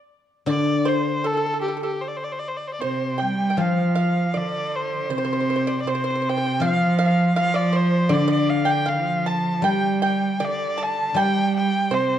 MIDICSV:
0, 0, Header, 1, 5, 480
1, 0, Start_track
1, 0, Tempo, 757576
1, 310, Time_signature, 2, 2, 24, 8
1, 1273, Tempo, 784314
1, 2233, Tempo, 763359
1, 3673, Tempo, 753769
1, 7698, End_track
2, 0, Start_track
2, 0, Title_t, "Erhu"
2, 0, Program_c, 0, 110
2, 320, Note_on_c, 0, 74, 95
2, 560, Note_on_c, 0, 72, 80
2, 569, Note_off_c, 0, 74, 0
2, 797, Note_on_c, 0, 69, 89
2, 807, Note_off_c, 0, 72, 0
2, 1019, Note_off_c, 0, 69, 0
2, 1023, Note_on_c, 0, 67, 66
2, 1139, Note_off_c, 0, 67, 0
2, 1158, Note_on_c, 0, 67, 76
2, 1275, Note_on_c, 0, 72, 57
2, 1284, Note_off_c, 0, 67, 0
2, 1315, Note_on_c, 0, 74, 59
2, 1324, Note_off_c, 0, 72, 0
2, 1370, Note_on_c, 0, 72, 65
2, 1379, Note_off_c, 0, 74, 0
2, 1413, Note_on_c, 0, 74, 62
2, 1423, Note_off_c, 0, 72, 0
2, 1464, Note_on_c, 0, 72, 65
2, 1473, Note_off_c, 0, 74, 0
2, 1507, Note_on_c, 0, 74, 66
2, 1516, Note_off_c, 0, 72, 0
2, 1561, Note_on_c, 0, 72, 57
2, 1570, Note_off_c, 0, 74, 0
2, 1614, Note_on_c, 0, 74, 59
2, 1624, Note_off_c, 0, 72, 0
2, 1680, Note_on_c, 0, 72, 70
2, 1689, Note_off_c, 0, 74, 0
2, 1715, Note_off_c, 0, 72, 0
2, 1717, Note_on_c, 0, 74, 49
2, 1759, Note_on_c, 0, 72, 69
2, 1769, Note_off_c, 0, 74, 0
2, 1999, Note_on_c, 0, 79, 73
2, 2008, Note_off_c, 0, 72, 0
2, 2249, Note_on_c, 0, 77, 68
2, 2258, Note_off_c, 0, 79, 0
2, 2483, Note_off_c, 0, 77, 0
2, 2499, Note_on_c, 0, 77, 69
2, 2731, Note_on_c, 0, 74, 82
2, 2740, Note_off_c, 0, 77, 0
2, 2974, Note_on_c, 0, 72, 69
2, 2983, Note_off_c, 0, 74, 0
2, 3204, Note_off_c, 0, 72, 0
2, 3220, Note_on_c, 0, 72, 79
2, 3617, Note_off_c, 0, 72, 0
2, 3643, Note_on_c, 0, 74, 60
2, 3689, Note_on_c, 0, 72, 86
2, 3699, Note_off_c, 0, 74, 0
2, 3941, Note_on_c, 0, 79, 90
2, 3950, Note_off_c, 0, 72, 0
2, 4165, Note_off_c, 0, 79, 0
2, 4184, Note_on_c, 0, 77, 93
2, 4389, Note_off_c, 0, 77, 0
2, 4422, Note_on_c, 0, 77, 88
2, 4625, Note_off_c, 0, 77, 0
2, 4639, Note_on_c, 0, 77, 105
2, 4748, Note_on_c, 0, 74, 90
2, 4757, Note_off_c, 0, 77, 0
2, 4876, Note_on_c, 0, 72, 89
2, 4885, Note_off_c, 0, 74, 0
2, 5115, Note_on_c, 0, 74, 92
2, 5124, Note_off_c, 0, 72, 0
2, 5226, Note_off_c, 0, 74, 0
2, 5233, Note_on_c, 0, 74, 89
2, 5349, Note_on_c, 0, 77, 84
2, 5358, Note_off_c, 0, 74, 0
2, 5479, Note_on_c, 0, 79, 95
2, 5488, Note_off_c, 0, 77, 0
2, 5592, Note_on_c, 0, 77, 82
2, 5601, Note_off_c, 0, 79, 0
2, 5843, Note_on_c, 0, 81, 77
2, 5852, Note_off_c, 0, 77, 0
2, 6082, Note_off_c, 0, 81, 0
2, 6091, Note_on_c, 0, 79, 84
2, 6311, Note_off_c, 0, 79, 0
2, 6334, Note_on_c, 0, 79, 73
2, 6587, Note_on_c, 0, 74, 83
2, 6597, Note_off_c, 0, 79, 0
2, 6833, Note_on_c, 0, 81, 83
2, 6842, Note_off_c, 0, 74, 0
2, 7058, Note_on_c, 0, 79, 92
2, 7067, Note_off_c, 0, 81, 0
2, 7287, Note_off_c, 0, 79, 0
2, 7298, Note_on_c, 0, 79, 90
2, 7538, Note_on_c, 0, 72, 85
2, 7548, Note_off_c, 0, 79, 0
2, 7698, Note_off_c, 0, 72, 0
2, 7698, End_track
3, 0, Start_track
3, 0, Title_t, "Pipa"
3, 0, Program_c, 1, 105
3, 300, Note_on_c, 1, 74, 76
3, 526, Note_off_c, 1, 74, 0
3, 541, Note_on_c, 1, 72, 79
3, 767, Note_off_c, 1, 72, 0
3, 787, Note_on_c, 1, 69, 61
3, 830, Note_off_c, 1, 69, 0
3, 845, Note_on_c, 1, 69, 40
3, 860, Note_off_c, 1, 69, 0
3, 868, Note_on_c, 1, 69, 44
3, 917, Note_off_c, 1, 69, 0
3, 926, Note_on_c, 1, 69, 33
3, 966, Note_off_c, 1, 69, 0
3, 974, Note_on_c, 1, 69, 37
3, 1017, Note_off_c, 1, 69, 0
3, 1024, Note_on_c, 1, 69, 33
3, 1057, Note_off_c, 1, 69, 0
3, 1065, Note_on_c, 1, 69, 43
3, 1109, Note_off_c, 1, 69, 0
3, 1121, Note_on_c, 1, 69, 35
3, 1153, Note_off_c, 1, 69, 0
3, 1161, Note_on_c, 1, 69, 48
3, 1204, Note_off_c, 1, 69, 0
3, 1766, Note_on_c, 1, 72, 66
3, 1977, Note_off_c, 1, 72, 0
3, 1988, Note_on_c, 1, 79, 56
3, 2173, Note_off_c, 1, 79, 0
3, 2185, Note_on_c, 1, 79, 49
3, 2230, Note_off_c, 1, 79, 0
3, 2233, Note_on_c, 1, 77, 70
3, 2458, Note_off_c, 1, 77, 0
3, 2470, Note_on_c, 1, 77, 69
3, 2696, Note_off_c, 1, 77, 0
3, 2711, Note_on_c, 1, 74, 60
3, 3168, Note_off_c, 1, 74, 0
3, 3191, Note_on_c, 1, 72, 65
3, 3232, Note_off_c, 1, 72, 0
3, 3240, Note_on_c, 1, 72, 53
3, 3275, Note_off_c, 1, 72, 0
3, 3282, Note_on_c, 1, 72, 60
3, 3326, Note_off_c, 1, 72, 0
3, 3333, Note_on_c, 1, 72, 45
3, 3374, Note_off_c, 1, 72, 0
3, 3382, Note_on_c, 1, 72, 48
3, 3424, Note_off_c, 1, 72, 0
3, 3441, Note_on_c, 1, 72, 47
3, 3471, Note_off_c, 1, 72, 0
3, 3478, Note_on_c, 1, 72, 55
3, 3518, Note_off_c, 1, 72, 0
3, 3550, Note_on_c, 1, 74, 68
3, 3662, Note_off_c, 1, 74, 0
3, 3676, Note_on_c, 1, 72, 70
3, 3717, Note_off_c, 1, 72, 0
3, 3724, Note_on_c, 1, 72, 48
3, 3765, Note_off_c, 1, 72, 0
3, 3782, Note_on_c, 1, 72, 53
3, 3816, Note_off_c, 1, 72, 0
3, 3824, Note_on_c, 1, 72, 40
3, 3847, Note_off_c, 1, 72, 0
3, 3855, Note_on_c, 1, 72, 46
3, 3888, Note_off_c, 1, 72, 0
3, 3896, Note_on_c, 1, 72, 39
3, 3936, Note_off_c, 1, 72, 0
3, 3944, Note_on_c, 1, 72, 45
3, 3987, Note_off_c, 1, 72, 0
3, 3995, Note_on_c, 1, 72, 44
3, 4038, Note_off_c, 1, 72, 0
3, 4052, Note_on_c, 1, 72, 48
3, 4090, Note_off_c, 1, 72, 0
3, 4149, Note_on_c, 1, 77, 75
3, 4369, Note_off_c, 1, 77, 0
3, 4385, Note_on_c, 1, 77, 82
3, 4606, Note_off_c, 1, 77, 0
3, 4625, Note_on_c, 1, 77, 76
3, 4734, Note_off_c, 1, 77, 0
3, 4737, Note_on_c, 1, 74, 73
3, 4849, Note_off_c, 1, 74, 0
3, 4856, Note_on_c, 1, 72, 71
3, 5079, Note_off_c, 1, 72, 0
3, 5090, Note_on_c, 1, 74, 83
3, 5200, Note_off_c, 1, 74, 0
3, 5207, Note_on_c, 1, 74, 75
3, 5437, Note_off_c, 1, 74, 0
3, 5446, Note_on_c, 1, 79, 73
3, 5566, Note_off_c, 1, 79, 0
3, 5577, Note_on_c, 1, 77, 75
3, 5809, Note_off_c, 1, 77, 0
3, 5834, Note_on_c, 1, 81, 75
3, 6061, Note_off_c, 1, 81, 0
3, 6074, Note_on_c, 1, 79, 79
3, 6302, Note_off_c, 1, 79, 0
3, 6317, Note_on_c, 1, 79, 83
3, 6544, Note_off_c, 1, 79, 0
3, 6559, Note_on_c, 1, 74, 76
3, 6785, Note_off_c, 1, 74, 0
3, 6799, Note_on_c, 1, 81, 75
3, 7023, Note_off_c, 1, 81, 0
3, 7046, Note_on_c, 1, 79, 85
3, 7492, Note_off_c, 1, 79, 0
3, 7520, Note_on_c, 1, 72, 77
3, 7698, Note_off_c, 1, 72, 0
3, 7698, End_track
4, 0, Start_track
4, 0, Title_t, "Guzheng"
4, 0, Program_c, 2, 107
4, 293, Note_on_c, 2, 50, 65
4, 1745, Note_off_c, 2, 50, 0
4, 2228, Note_on_c, 2, 53, 57
4, 3670, Note_off_c, 2, 53, 0
4, 4139, Note_on_c, 2, 53, 64
4, 5090, Note_on_c, 2, 50, 72
4, 5576, Note_off_c, 2, 53, 0
4, 6061, Note_on_c, 2, 55, 64
4, 6559, Note_off_c, 2, 50, 0
4, 7025, Note_off_c, 2, 55, 0
4, 7033, Note_on_c, 2, 55, 62
4, 7698, Note_off_c, 2, 55, 0
4, 7698, End_track
5, 0, Start_track
5, 0, Title_t, "Cello"
5, 0, Program_c, 3, 42
5, 1760, Note_on_c, 3, 48, 65
5, 2009, Note_on_c, 3, 55, 77
5, 2018, Note_off_c, 3, 48, 0
5, 2249, Note_on_c, 3, 53, 80
5, 2258, Note_off_c, 3, 55, 0
5, 2724, Note_on_c, 3, 50, 71
5, 2734, Note_off_c, 3, 53, 0
5, 3186, Note_on_c, 3, 48, 88
5, 3196, Note_off_c, 3, 50, 0
5, 3669, Note_off_c, 3, 48, 0
5, 3679, Note_on_c, 3, 48, 72
5, 4151, Note_on_c, 3, 53, 90
5, 4161, Note_off_c, 3, 48, 0
5, 4623, Note_off_c, 3, 53, 0
5, 4632, Note_on_c, 3, 53, 92
5, 5110, Note_on_c, 3, 50, 88
5, 5119, Note_off_c, 3, 53, 0
5, 5587, Note_on_c, 3, 53, 70
5, 5596, Note_off_c, 3, 50, 0
5, 6065, Note_on_c, 3, 55, 82
5, 6074, Note_off_c, 3, 53, 0
5, 6561, Note_on_c, 3, 50, 74
5, 6570, Note_off_c, 3, 55, 0
5, 7040, Note_off_c, 3, 50, 0
5, 7043, Note_on_c, 3, 55, 89
5, 7519, Note_on_c, 3, 48, 69
5, 7529, Note_off_c, 3, 55, 0
5, 7698, Note_off_c, 3, 48, 0
5, 7698, End_track
0, 0, End_of_file